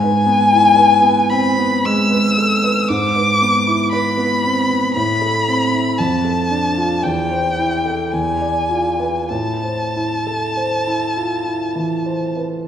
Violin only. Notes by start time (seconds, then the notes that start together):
Already playing: G#5
1.29 B5
1.85 E6
2.88 D6
3.92 B5
4.94 B5
5.98 A5
7.03 G5
8.11 G#5
9.29 A5